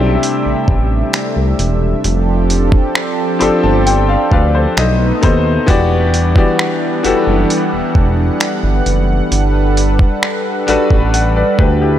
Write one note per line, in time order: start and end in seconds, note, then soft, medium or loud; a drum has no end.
0.00 0.17 B1 medium
0.00 2.01 C3 medium
0.00 2.06 C3 loud
0.00 2.00 G3 medium
0.00 2.01 A3 medium
0.00 2.07 C4 medium
0.00 2.00 D4 medium
0.00 2.06 D4 medium
0.00 2.07 E4 medium
0.00 1.25 G4 loud
0.00 2.07 A4 loud
0.00 2.00 E5 medium
0.23 closed hi-hat medium
0.45 0.54 A1 soft
0.68 1.03 A1 loud
0.68 kick medium
1.13 finger snap loud
1.13 closed hi-hat medium
1.36 1.54 C2 medium
1.59 1.94 E1 medium
1.59 closed hi-hat medium
2.04 2.75 F1 loud
2.04 4.74 F3 medium
2.04 4.74 C4 medium
2.04 4.74 D4 medium
2.04 4.74 G4 medium
2.04 4.74 A4 medium
2.04 closed hi-hat medium
2.50 closed hi-hat medium
2.72 kick loud
2.95 finger snap loud
3.39 3.50 G1 soft
3.39 4.76 F3 medium
3.39 4.77 C4 medium
3.39 4.77 D4 medium
3.39 4.78 G4 medium
3.39 3.87 A4 medium
3.39 3.62 C6 medium
3.39 closed hi-hat medium
3.63 4.16 G1 medium
3.63 3.85 A5 medium
3.86 4.28 G5 medium
3.86 closed hi-hat medium
4.09 4.30 D5 medium
4.09 4.30 F5 medium
4.31 4.67 D2 medium
4.31 4.54 B4 medium
4.31 4.53 D5 medium
4.31 4.74 F5 medium
4.31 kick medium
4.55 4.98 A4 medium
4.55 4.98 C5 medium
4.77 5.12 B1 loud
4.77 5.67 A3 medium
4.77 5.67 B3 medium
4.77 5.67 D#4 medium
4.77 5.19 D#5 medium
4.77 finger snap loud
4.77 closed hi-hat medium
5.21 5.58 D#2 medium
5.21 5.59 B2 medium
5.21 5.59 B3 medium
5.21 5.59 D#4 medium
5.21 5.60 A4 medium
5.21 5.60 C5 medium
5.21 5.65 D#5 medium
5.21 kick medium
5.21 closed hi-hat medium
5.66 6.38 E1 loud
5.66 6.22 E3 loud
5.66 9.28 E3 medium
5.66 9.28 G3 medium
5.66 6.23 B3 loud
5.66 9.28 B3 medium
5.66 9.28 D4 medium
5.66 6.23 F#4 loud
5.66 6.23 G4 medium
5.66 6.24 D5 loud
5.66 11.99 F#5 medium
5.66 kick loud
5.66 closed hi-hat medium
6.14 closed hi-hat medium
6.35 6.91 E3 medium
6.35 6.91 B3 medium
6.35 6.91 F#4 medium
6.35 6.92 G4 medium
6.35 6.92 D5 medium
6.35 kick loud
6.59 finger snap loud
7.03 7.13 F#1 soft
7.03 8.51 E3 medium
7.03 8.51 B3 medium
7.03 8.51 F#4 medium
7.03 8.52 G4 medium
7.03 8.52 A4 medium
7.03 closed hi-hat medium
7.27 7.45 F#1 medium
7.50 closed hi-hat medium
7.73 7.82 E1 soft
7.95 8.30 E1 loud
7.95 kick loud
8.40 finger snap loud
8.40 closed hi-hat medium
8.63 8.81 G1 medium
8.86 9.21 F#1 medium
8.86 closed hi-hat medium
9.31 10.02 G1 loud
9.31 11.99 G3 medium
9.31 11.99 D4 medium
9.31 11.99 A4 medium
9.31 11.99 B4 medium
9.31 closed hi-hat medium
9.77 closed hi-hat medium
9.99 kick medium
10.23 finger snap loud
10.67 10.77 A1 soft
10.67 11.99 G3 medium
10.67 11.99 D4 medium
10.67 11.13 F#4 medium
10.67 11.14 A4 medium
10.67 11.14 B4 medium
10.67 closed hi-hat medium
10.90 11.43 A1 medium
10.90 kick medium
11.14 11.35 D5 soft
11.14 11.35 F#5 medium
11.14 closed hi-hat medium
11.36 11.58 B4 medium
11.36 11.58 D5 medium
11.59 11.99 D2 loud
11.59 11.80 G4 medium
11.59 11.81 B4 medium
11.59 kick medium
11.82 11.99 E4 medium
11.82 11.99 G4 medium